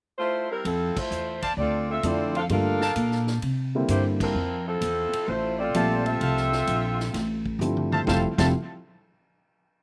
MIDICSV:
0, 0, Header, 1, 7, 480
1, 0, Start_track
1, 0, Key_signature, -1, "major"
1, 0, Tempo, 463320
1, 668, Time_signature, 4, 2, 24, 8
1, 10181, End_track
2, 0, Start_track
2, 0, Title_t, "Trumpet section"
2, 0, Program_c, 0, 61
2, 1474, Note_on_c, 0, 81, 91
2, 1477, Note_on_c, 0, 74, 79
2, 1477, Note_on_c, 0, 77, 80
2, 1480, Note_on_c, 0, 72, 88
2, 1578, Note_off_c, 0, 81, 0
2, 1579, Note_off_c, 0, 77, 0
2, 1580, Note_off_c, 0, 74, 0
2, 1582, Note_off_c, 0, 72, 0
2, 2916, Note_on_c, 0, 77, 74
2, 2917, Note_on_c, 0, 70, 79
2, 2917, Note_on_c, 0, 79, 69
2, 2917, Note_on_c, 0, 81, 90
2, 3019, Note_off_c, 0, 70, 0
2, 3019, Note_off_c, 0, 77, 0
2, 3019, Note_off_c, 0, 79, 0
2, 3019, Note_off_c, 0, 81, 0
2, 5956, Note_on_c, 0, 72, 77
2, 5957, Note_on_c, 0, 76, 72
2, 5957, Note_on_c, 0, 81, 85
2, 5958, Note_on_c, 0, 65, 80
2, 6426, Note_off_c, 0, 72, 0
2, 6427, Note_off_c, 0, 81, 0
2, 6429, Note_off_c, 0, 76, 0
2, 6438, Note_on_c, 0, 72, 74
2, 6439, Note_on_c, 0, 77, 70
2, 6439, Note_on_c, 0, 81, 79
2, 6441, Note_on_c, 0, 76, 69
2, 6654, Note_off_c, 0, 72, 0
2, 6654, Note_off_c, 0, 77, 0
2, 6655, Note_off_c, 0, 81, 0
2, 6656, Note_off_c, 0, 76, 0
2, 6693, Note_off_c, 0, 65, 0
2, 8209, Note_on_c, 0, 72, 82
2, 8211, Note_on_c, 0, 81, 87
2, 8212, Note_on_c, 0, 76, 77
2, 8212, Note_on_c, 0, 77, 73
2, 8307, Note_off_c, 0, 72, 0
2, 8308, Note_off_c, 0, 81, 0
2, 8309, Note_off_c, 0, 76, 0
2, 8309, Note_off_c, 0, 77, 0
2, 8363, Note_on_c, 0, 76, 74
2, 8365, Note_on_c, 0, 72, 80
2, 8365, Note_on_c, 0, 81, 84
2, 8366, Note_on_c, 0, 77, 74
2, 8504, Note_off_c, 0, 76, 0
2, 8505, Note_off_c, 0, 72, 0
2, 8505, Note_off_c, 0, 81, 0
2, 8506, Note_off_c, 0, 77, 0
2, 8686, Note_on_c, 0, 72, 85
2, 8687, Note_on_c, 0, 77, 72
2, 8688, Note_on_c, 0, 76, 78
2, 8688, Note_on_c, 0, 81, 84
2, 8785, Note_off_c, 0, 72, 0
2, 8786, Note_off_c, 0, 77, 0
2, 8787, Note_off_c, 0, 76, 0
2, 8787, Note_off_c, 0, 81, 0
2, 10181, End_track
3, 0, Start_track
3, 0, Title_t, "Saxophone section"
3, 0, Program_c, 1, 65
3, 193, Note_on_c, 1, 57, 82
3, 193, Note_on_c, 1, 72, 93
3, 195, Note_on_c, 1, 64, 83
3, 200, Note_on_c, 1, 65, 84
3, 495, Note_off_c, 1, 57, 0
3, 495, Note_off_c, 1, 72, 0
3, 496, Note_off_c, 1, 64, 0
3, 499, Note_off_c, 1, 65, 0
3, 528, Note_on_c, 1, 60, 74
3, 529, Note_on_c, 1, 64, 74
3, 533, Note_on_c, 1, 70, 88
3, 535, Note_on_c, 1, 55, 73
3, 671, Note_off_c, 1, 64, 0
3, 675, Note_off_c, 1, 60, 0
3, 677, Note_off_c, 1, 70, 0
3, 678, Note_off_c, 1, 55, 0
3, 684, Note_on_c, 1, 64, 75
3, 684, Note_on_c, 1, 69, 88
3, 686, Note_on_c, 1, 53, 70
3, 691, Note_on_c, 1, 60, 80
3, 1003, Note_off_c, 1, 64, 0
3, 1003, Note_off_c, 1, 69, 0
3, 1004, Note_off_c, 1, 53, 0
3, 1006, Note_off_c, 1, 60, 0
3, 1019, Note_on_c, 1, 64, 74
3, 1020, Note_on_c, 1, 72, 88
3, 1021, Note_on_c, 1, 65, 70
3, 1024, Note_on_c, 1, 57, 74
3, 1487, Note_off_c, 1, 64, 0
3, 1487, Note_off_c, 1, 72, 0
3, 1488, Note_off_c, 1, 65, 0
3, 1489, Note_off_c, 1, 57, 0
3, 1642, Note_on_c, 1, 74, 80
3, 1646, Note_on_c, 1, 65, 69
3, 1649, Note_on_c, 1, 60, 66
3, 1650, Note_on_c, 1, 69, 72
3, 1939, Note_off_c, 1, 74, 0
3, 1942, Note_off_c, 1, 65, 0
3, 1943, Note_off_c, 1, 60, 0
3, 1944, Note_off_c, 1, 69, 0
3, 1971, Note_on_c, 1, 65, 74
3, 1973, Note_on_c, 1, 69, 72
3, 1979, Note_on_c, 1, 60, 72
3, 1981, Note_on_c, 1, 76, 82
3, 2106, Note_off_c, 1, 65, 0
3, 2107, Note_off_c, 1, 69, 0
3, 2110, Note_off_c, 1, 60, 0
3, 2112, Note_off_c, 1, 76, 0
3, 2126, Note_on_c, 1, 65, 73
3, 2129, Note_on_c, 1, 60, 75
3, 2130, Note_on_c, 1, 69, 75
3, 2132, Note_on_c, 1, 74, 89
3, 2441, Note_off_c, 1, 69, 0
3, 2443, Note_off_c, 1, 65, 0
3, 2445, Note_off_c, 1, 60, 0
3, 2447, Note_off_c, 1, 74, 0
3, 2450, Note_on_c, 1, 72, 81
3, 2454, Note_on_c, 1, 69, 75
3, 2459, Note_on_c, 1, 62, 80
3, 2459, Note_on_c, 1, 77, 88
3, 2515, Note_off_c, 1, 72, 0
3, 2518, Note_off_c, 1, 69, 0
3, 2522, Note_off_c, 1, 62, 0
3, 2522, Note_off_c, 1, 77, 0
3, 2614, Note_on_c, 1, 62, 90
3, 2614, Note_on_c, 1, 77, 97
3, 2617, Note_on_c, 1, 69, 81
3, 2617, Note_on_c, 1, 70, 81
3, 3519, Note_off_c, 1, 62, 0
3, 3519, Note_off_c, 1, 77, 0
3, 3521, Note_off_c, 1, 69, 0
3, 3521, Note_off_c, 1, 70, 0
3, 4042, Note_on_c, 1, 72, 77
3, 4044, Note_on_c, 1, 58, 68
3, 4046, Note_on_c, 1, 67, 65
3, 4047, Note_on_c, 1, 64, 68
3, 4185, Note_off_c, 1, 72, 0
3, 4187, Note_off_c, 1, 58, 0
3, 4188, Note_off_c, 1, 67, 0
3, 4189, Note_off_c, 1, 64, 0
3, 4372, Note_on_c, 1, 53, 72
3, 4372, Note_on_c, 1, 60, 73
3, 4372, Note_on_c, 1, 64, 72
3, 4372, Note_on_c, 1, 70, 81
3, 4809, Note_off_c, 1, 53, 0
3, 4809, Note_off_c, 1, 70, 0
3, 4810, Note_off_c, 1, 60, 0
3, 4810, Note_off_c, 1, 64, 0
3, 4845, Note_on_c, 1, 53, 75
3, 4848, Note_on_c, 1, 60, 74
3, 4848, Note_on_c, 1, 64, 74
3, 4848, Note_on_c, 1, 69, 92
3, 5458, Note_off_c, 1, 64, 0
3, 5468, Note_on_c, 1, 57, 81
3, 5471, Note_on_c, 1, 64, 79
3, 5472, Note_off_c, 1, 53, 0
3, 5473, Note_on_c, 1, 65, 80
3, 5474, Note_off_c, 1, 60, 0
3, 5474, Note_off_c, 1, 69, 0
3, 5474, Note_on_c, 1, 72, 88
3, 5787, Note_off_c, 1, 65, 0
3, 5793, Note_off_c, 1, 57, 0
3, 5795, Note_off_c, 1, 64, 0
3, 5795, Note_on_c, 1, 74, 91
3, 5797, Note_off_c, 1, 72, 0
3, 5797, Note_on_c, 1, 60, 81
3, 5799, Note_on_c, 1, 65, 82
3, 5800, Note_on_c, 1, 69, 79
3, 6240, Note_off_c, 1, 74, 0
3, 6242, Note_off_c, 1, 60, 0
3, 6242, Note_off_c, 1, 65, 0
3, 6243, Note_off_c, 1, 69, 0
3, 6268, Note_on_c, 1, 65, 87
3, 6270, Note_on_c, 1, 69, 94
3, 6274, Note_on_c, 1, 60, 92
3, 6278, Note_on_c, 1, 76, 102
3, 7711, Note_off_c, 1, 65, 0
3, 7712, Note_off_c, 1, 69, 0
3, 7714, Note_off_c, 1, 60, 0
3, 7716, Note_off_c, 1, 76, 0
3, 8353, Note_on_c, 1, 64, 72
3, 8357, Note_on_c, 1, 60, 71
3, 8357, Note_on_c, 1, 69, 72
3, 8361, Note_on_c, 1, 77, 77
3, 8533, Note_off_c, 1, 64, 0
3, 8535, Note_off_c, 1, 60, 0
3, 8535, Note_off_c, 1, 69, 0
3, 8537, Note_off_c, 1, 77, 0
3, 8679, Note_on_c, 1, 64, 71
3, 8681, Note_on_c, 1, 60, 71
3, 8682, Note_on_c, 1, 77, 77
3, 8683, Note_on_c, 1, 69, 71
3, 8820, Note_off_c, 1, 64, 0
3, 8821, Note_off_c, 1, 60, 0
3, 8821, Note_off_c, 1, 77, 0
3, 8822, Note_off_c, 1, 69, 0
3, 10181, End_track
4, 0, Start_track
4, 0, Title_t, "Upright piano"
4, 0, Program_c, 2, 0
4, 2112, Note_on_c, 2, 53, 53
4, 2113, Note_on_c, 2, 50, 56
4, 2116, Note_on_c, 2, 60, 50
4, 2120, Note_on_c, 2, 57, 50
4, 2121, Note_on_c, 2, 64, 60
4, 2404, Note_off_c, 2, 53, 0
4, 2405, Note_off_c, 2, 50, 0
4, 2406, Note_off_c, 2, 60, 0
4, 2408, Note_off_c, 2, 57, 0
4, 2409, Note_off_c, 2, 64, 0
4, 2591, Note_on_c, 2, 50, 50
4, 2593, Note_on_c, 2, 55, 51
4, 2593, Note_on_c, 2, 57, 49
4, 2594, Note_on_c, 2, 58, 49
4, 2597, Note_on_c, 2, 65, 60
4, 2883, Note_off_c, 2, 50, 0
4, 2884, Note_off_c, 2, 55, 0
4, 2885, Note_off_c, 2, 57, 0
4, 2885, Note_off_c, 2, 58, 0
4, 2886, Note_off_c, 2, 65, 0
4, 3884, Note_on_c, 2, 50, 57
4, 3887, Note_on_c, 2, 64, 61
4, 3889, Note_on_c, 2, 55, 54
4, 3889, Note_on_c, 2, 58, 50
4, 3897, Note_on_c, 2, 60, 53
4, 4481, Note_off_c, 2, 50, 0
4, 4482, Note_off_c, 2, 64, 0
4, 4484, Note_off_c, 2, 55, 0
4, 4484, Note_off_c, 2, 58, 0
4, 4488, Note_off_c, 2, 60, 0
4, 5959, Note_on_c, 2, 53, 55
4, 5959, Note_on_c, 2, 60, 51
4, 5961, Note_on_c, 2, 55, 46
4, 5961, Note_on_c, 2, 57, 49
4, 5961, Note_on_c, 2, 76, 61
4, 6694, Note_off_c, 2, 53, 0
4, 6694, Note_off_c, 2, 60, 0
4, 6695, Note_off_c, 2, 55, 0
4, 6695, Note_off_c, 2, 57, 0
4, 6695, Note_off_c, 2, 76, 0
4, 7881, Note_on_c, 2, 55, 47
4, 7884, Note_on_c, 2, 57, 48
4, 7885, Note_on_c, 2, 64, 56
4, 7886, Note_on_c, 2, 53, 52
4, 7889, Note_on_c, 2, 60, 50
4, 8355, Note_off_c, 2, 55, 0
4, 8356, Note_off_c, 2, 57, 0
4, 8356, Note_off_c, 2, 64, 0
4, 8357, Note_off_c, 2, 53, 0
4, 8358, Note_off_c, 2, 60, 0
4, 8373, Note_on_c, 2, 53, 60
4, 8374, Note_on_c, 2, 55, 53
4, 8374, Note_on_c, 2, 57, 57
4, 8379, Note_on_c, 2, 60, 56
4, 8381, Note_on_c, 2, 64, 67
4, 8556, Note_off_c, 2, 53, 0
4, 8557, Note_off_c, 2, 55, 0
4, 8557, Note_off_c, 2, 57, 0
4, 8559, Note_off_c, 2, 60, 0
4, 8560, Note_off_c, 2, 64, 0
4, 8692, Note_on_c, 2, 53, 59
4, 8692, Note_on_c, 2, 55, 54
4, 8693, Note_on_c, 2, 57, 56
4, 8695, Note_on_c, 2, 60, 54
4, 8695, Note_on_c, 2, 64, 68
4, 8821, Note_off_c, 2, 53, 0
4, 8821, Note_off_c, 2, 55, 0
4, 8822, Note_off_c, 2, 57, 0
4, 8823, Note_off_c, 2, 60, 0
4, 8823, Note_off_c, 2, 64, 0
4, 10181, End_track
5, 0, Start_track
5, 0, Title_t, "Upright bass"
5, 0, Program_c, 3, 32
5, 670, Note_on_c, 3, 41, 79
5, 973, Note_off_c, 3, 41, 0
5, 1147, Note_on_c, 3, 40, 81
5, 1613, Note_off_c, 3, 40, 0
5, 1625, Note_on_c, 3, 38, 79
5, 2092, Note_off_c, 3, 38, 0
5, 2103, Note_on_c, 3, 41, 85
5, 2571, Note_off_c, 3, 41, 0
5, 2584, Note_on_c, 3, 43, 79
5, 3051, Note_off_c, 3, 43, 0
5, 3064, Note_on_c, 3, 46, 83
5, 3531, Note_off_c, 3, 46, 0
5, 3546, Note_on_c, 3, 48, 76
5, 4012, Note_off_c, 3, 48, 0
5, 4026, Note_on_c, 3, 43, 88
5, 4492, Note_off_c, 3, 43, 0
5, 4503, Note_on_c, 3, 41, 78
5, 4970, Note_off_c, 3, 41, 0
5, 4984, Note_on_c, 3, 40, 84
5, 5289, Note_off_c, 3, 40, 0
5, 5469, Note_on_c, 3, 33, 83
5, 5933, Note_off_c, 3, 33, 0
5, 5954, Note_on_c, 3, 34, 85
5, 6416, Note_off_c, 3, 34, 0
5, 6429, Note_on_c, 3, 36, 77
5, 6893, Note_off_c, 3, 36, 0
5, 6912, Note_on_c, 3, 34, 82
5, 7375, Note_off_c, 3, 34, 0
5, 7393, Note_on_c, 3, 33, 82
5, 7856, Note_off_c, 3, 33, 0
5, 7863, Note_on_c, 3, 31, 87
5, 8331, Note_off_c, 3, 31, 0
5, 8358, Note_on_c, 3, 29, 87
5, 8535, Note_off_c, 3, 29, 0
5, 8687, Note_on_c, 3, 29, 92
5, 8824, Note_off_c, 3, 29, 0
5, 10181, End_track
6, 0, Start_track
6, 0, Title_t, "Muted upright bass strokes"
6, 5312, Note_on_c, 9, 29, 36
6, 5416, Note_off_c, 9, 29, 0
6, 10181, End_track
7, 0, Start_track
7, 0, Title_t, "Drums"
7, 674, Note_on_c, 9, 36, 20
7, 674, Note_on_c, 9, 51, 60
7, 778, Note_off_c, 9, 36, 0
7, 778, Note_off_c, 9, 51, 0
7, 1000, Note_on_c, 9, 36, 81
7, 1000, Note_on_c, 9, 49, 72
7, 1103, Note_off_c, 9, 49, 0
7, 1104, Note_off_c, 9, 36, 0
7, 1153, Note_on_c, 9, 44, 59
7, 1256, Note_off_c, 9, 44, 0
7, 1475, Note_on_c, 9, 51, 64
7, 1478, Note_on_c, 9, 36, 52
7, 1578, Note_off_c, 9, 51, 0
7, 1582, Note_off_c, 9, 36, 0
7, 1630, Note_on_c, 9, 36, 26
7, 1734, Note_off_c, 9, 36, 0
7, 2105, Note_on_c, 9, 44, 53
7, 2105, Note_on_c, 9, 51, 66
7, 2109, Note_on_c, 9, 36, 23
7, 2209, Note_off_c, 9, 44, 0
7, 2209, Note_off_c, 9, 51, 0
7, 2212, Note_off_c, 9, 36, 0
7, 2434, Note_on_c, 9, 51, 40
7, 2538, Note_off_c, 9, 51, 0
7, 2583, Note_on_c, 9, 51, 58
7, 2588, Note_on_c, 9, 36, 23
7, 2687, Note_off_c, 9, 51, 0
7, 2692, Note_off_c, 9, 36, 0
7, 2911, Note_on_c, 9, 38, 57
7, 3014, Note_off_c, 9, 38, 0
7, 3063, Note_on_c, 9, 44, 57
7, 3063, Note_on_c, 9, 51, 67
7, 3066, Note_on_c, 9, 36, 18
7, 3167, Note_off_c, 9, 44, 0
7, 3167, Note_off_c, 9, 51, 0
7, 3169, Note_off_c, 9, 36, 0
7, 3225, Note_on_c, 9, 38, 27
7, 3328, Note_off_c, 9, 38, 0
7, 3386, Note_on_c, 9, 38, 43
7, 3490, Note_off_c, 9, 38, 0
7, 3545, Note_on_c, 9, 51, 56
7, 3547, Note_on_c, 9, 36, 17
7, 3648, Note_off_c, 9, 51, 0
7, 3651, Note_off_c, 9, 36, 0
7, 4024, Note_on_c, 9, 44, 59
7, 4024, Note_on_c, 9, 51, 66
7, 4027, Note_on_c, 9, 36, 23
7, 4127, Note_off_c, 9, 44, 0
7, 4127, Note_off_c, 9, 51, 0
7, 4131, Note_off_c, 9, 36, 0
7, 4355, Note_on_c, 9, 36, 78
7, 4359, Note_on_c, 9, 49, 72
7, 4459, Note_off_c, 9, 36, 0
7, 4462, Note_off_c, 9, 49, 0
7, 4988, Note_on_c, 9, 44, 59
7, 4988, Note_on_c, 9, 51, 67
7, 4990, Note_on_c, 9, 36, 18
7, 5092, Note_off_c, 9, 44, 0
7, 5092, Note_off_c, 9, 51, 0
7, 5093, Note_off_c, 9, 36, 0
7, 5317, Note_on_c, 9, 51, 67
7, 5421, Note_off_c, 9, 51, 0
7, 5471, Note_on_c, 9, 36, 21
7, 5575, Note_off_c, 9, 36, 0
7, 5951, Note_on_c, 9, 36, 19
7, 5951, Note_on_c, 9, 44, 49
7, 5951, Note_on_c, 9, 51, 70
7, 6055, Note_off_c, 9, 36, 0
7, 6055, Note_off_c, 9, 44, 0
7, 6055, Note_off_c, 9, 51, 0
7, 6275, Note_on_c, 9, 51, 43
7, 6379, Note_off_c, 9, 51, 0
7, 6432, Note_on_c, 9, 36, 23
7, 6432, Note_on_c, 9, 51, 55
7, 6535, Note_off_c, 9, 51, 0
7, 6536, Note_off_c, 9, 36, 0
7, 6596, Note_on_c, 9, 38, 28
7, 6700, Note_off_c, 9, 38, 0
7, 6757, Note_on_c, 9, 38, 43
7, 6860, Note_off_c, 9, 38, 0
7, 6913, Note_on_c, 9, 44, 59
7, 6913, Note_on_c, 9, 51, 62
7, 6914, Note_on_c, 9, 36, 24
7, 7017, Note_off_c, 9, 36, 0
7, 7017, Note_off_c, 9, 44, 0
7, 7017, Note_off_c, 9, 51, 0
7, 7250, Note_on_c, 9, 38, 42
7, 7354, Note_off_c, 9, 38, 0
7, 7395, Note_on_c, 9, 36, 17
7, 7398, Note_on_c, 9, 51, 61
7, 7400, Note_on_c, 9, 38, 37
7, 7499, Note_off_c, 9, 36, 0
7, 7501, Note_off_c, 9, 51, 0
7, 7504, Note_off_c, 9, 38, 0
7, 7723, Note_on_c, 9, 36, 56
7, 7827, Note_off_c, 9, 36, 0
7, 7883, Note_on_c, 9, 44, 53
7, 7885, Note_on_c, 9, 47, 45
7, 7986, Note_off_c, 9, 44, 0
7, 7988, Note_off_c, 9, 47, 0
7, 8047, Note_on_c, 9, 47, 57
7, 8150, Note_off_c, 9, 47, 0
7, 8207, Note_on_c, 9, 47, 77
7, 8311, Note_off_c, 9, 47, 0
7, 8361, Note_on_c, 9, 36, 88
7, 8368, Note_on_c, 9, 38, 78
7, 8465, Note_off_c, 9, 36, 0
7, 8472, Note_off_c, 9, 38, 0
7, 8686, Note_on_c, 9, 36, 90
7, 8688, Note_on_c, 9, 38, 82
7, 8688, Note_on_c, 9, 49, 77
7, 8790, Note_off_c, 9, 36, 0
7, 8792, Note_off_c, 9, 38, 0
7, 8792, Note_off_c, 9, 49, 0
7, 10181, End_track
0, 0, End_of_file